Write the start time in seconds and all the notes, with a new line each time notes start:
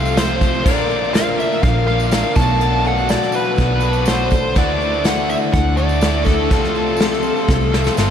Already playing: C2 C3 F3 A3 C4 F4 A4 F5
0.05 tambourine
0.17 C3 F3 A3 C4 F4 A4 C5, snare, closed hi-hat, tambourine
0.30 tambourine
0.41 A3 F4 A4, kick, snare, tambourine
0.54 tambourine
0.64 A#1 A#2 D3 F3 A#3 D4 A#4 D5, kick, crash, tambourine
0.69 F4
0.90 F3 A#3 D4 A#4, tambourine
1.04 tambourine
1.14 A#2 D3 F3 A#3 D4 A#4 F5, snare, closed hi-hat, tambourine
1.39 E5, tambourine
1.52 tambourine
1.63 A#1 F3 A#3 D4 A#4 F5, kick, closed hi-hat, tambourine
1.87 A#2 D3 F3 A#3 D4 F4 A#4 F5
2.00 tambourine
2.11 A#2 D3 F3 A#3 D4 F4 A#4, snare, closed hi-hat, tambourine
2.35 B1 B2 F#3 A3 B3 D4 A4 A5, kick, snare, tambourine
2.40 F#4
2.60 B2 F#3 A3 D4 A4, closed hi-hat, tambourine
2.85 A3 D4 A4 F#5, tambourine
2.98 tambourine
3.09 B2 F#3 A3 D4 A4 D5, snare, closed hi-hat, tambourine
3.22 snare, tambourine
3.32 B4, tambourine
3.45 tambourine
3.56 B1 B2 F#3 A3 D4, kick, closed hi-hat, tambourine
3.61 B3 F#4 A4
3.80 A3 D4 F#4 A4, tambourine
3.85 B2 F#3 B3
3.93 tambourine
4.06 B2 F#3 A3 D4 C5, snare, closed hi-hat, tambourine
4.10 A4
4.30 A3 D4 A4, kick, snare, tambourine
4.55 D2 D3 E3 A3 D4 F#4 D5, kick, closed hi-hat, tambourine
4.81 A3 D4 F#4, tambourine
4.94 tambourine
5.04 D3 E3 A3 D4 F#4 F#5, snare, closed hi-hat, tambourine
5.17 tambourine
5.30 E5, tambourine
5.42 tambourine
5.53 D2 E3 A3 D4 F#4 F#5, kick, closed hi-hat, tambourine
5.77 A3 D4 F#4 D5, tambourine
5.81 D3
5.89 tambourine
6.01 D3 E3 A3 D4 F#4, snare, closed hi-hat, tambourine
6.25 D4 F#4 A4, kick, tambourine
6.29 A3
6.50 C2 C3 F3 A3 C4 F4 A4, kick, closed hi-hat, tambourine
6.62 snare, tambourine
6.75 A3 F4 A4, tambourine
6.87 tambourine
6.97 closed hi-hat, tambourine
7.01 C3 F3 A3 F4 A4, snare
7.13 snare
7.23 tambourine
7.36 tambourine
7.49 C2 F3 A3 F4 A4, kick, snare
7.61 tambourine
7.73 C3 F3 A3 C4 F4 A4, snare
7.84 snare, tambourine
7.97 G1 C3 F3 A3 C4 F4 A4, snare, tambourine